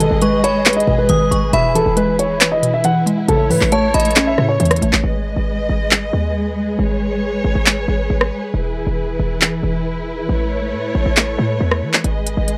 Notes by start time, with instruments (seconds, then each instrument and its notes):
Already playing: synth pluck B2 G#3, string section G#3 G#4 B4 D#5
0.00 synth pluck D#3, grand piano A4, closed hi-hat
0.11 808-style bass G#1
0.22 synth pluck G#3, grand piano B4, synth bell C#6, closed hi-hat
0.44 grand piano C#5, synth bell B5, closed hi-hat
0.65 synth pluck B4, clap, closed hi-hat
0.73 grand piano D#5, closed hi-hat
0.80 closed hi-hat
0.87 808-style bass G#1, synth pluck B2
0.98 grand piano B4
1.09 808-style bass G#1, synth pluck D#3, synth bell D#6, closed hi-hat
1.31 808-style bass G#1, synth pluck G#3, synth bell C#6, closed hi-hat
1.53 808-style bass E1, synth pluck B2, string section E3 E4, grand piano E5, synth bell B5, closed hi-hat
1.75 808-style bass D#1, synth pluck E3, grand piano A4, closed hi-hat
1.86 808-style bass E1
1.97 synth pluck G#3, grand piano B4, closed hi-hat
2.19 grand piano C#5, closed hi-hat
2.41 synth pluck B4, clap, closed hi-hat
2.52 grand piano D#5
2.63 synth pluck B2, closed hi-hat
2.74 grand piano E5
2.84 synth pluck E3, grand piano F#5, closed hi-hat
3.06 synth pluck G#3, closed hi-hat
3.28 808-style bass A1, synth pluck C#3, string section A3 C#5, grand piano A4, closed hi-hat
3.50 808-style bass A2, synth pluck E3, grand piano B4, open hi-hat
3.61 808-style bass A1, clap
3.72 synth pluck A3, grand piano C#5, synth bell A5, closed hi-hat
3.94 808-style bass A1, grand piano D#5, synth bell B5, closed hi-hat
4.00 closed hi-hat
4.05 closed hi-hat
4.11 closed hi-hat
4.16 synth pluck C#4, clap, closed hi-hat
4.27 grand piano E5
4.38 808-style bass A2, synth pluck C#3, cross-stick
4.49 grand piano C#5
4.60 808-style bass E2, synth pluck E3, closed hi-hat
4.65 closed hi-hat
4.71 cross-stick, closed hi-hat
4.76 closed hi-hat
4.82 808-style bass A1, synth pluck A3, closed hi-hat
4.93 808-style bass A1, clap
5.04 808-style bass G#1, string section G#3 G#4 B4 D#5
5.36 808-style bass G#1
5.69 808-style bass G#1
5.91 clap
6.13 808-style bass D#2
6.79 808-style bass G#1, string section C#5
7.44 808-style bass G#1
7.55 808-style bass G#1
7.66 clap
7.88 808-style bass G#1
8.10 808-style bass G#1
8.21 cross-stick
8.54 808-style bass E1, string section E3 E4
8.76 808-style bass D#1
8.87 808-style bass E1
9.20 808-style bass E1
9.41 clap
9.63 808-style bass E1
10.29 808-style bass A1, string section A3 C#5
10.73 808-style bass A2
10.95 808-style bass A1
11.06 808-style bass A1
11.17 clap
11.39 808-style bass A2
11.60 808-style bass E2
11.71 cross-stick
11.82 808-style bass E3
11.93 clap
12.04 808-style bass G#1, string section G#3 G#4 D#5, closed hi-hat
12.27 closed hi-hat
12.37 808-style bass G#1
12.48 closed hi-hat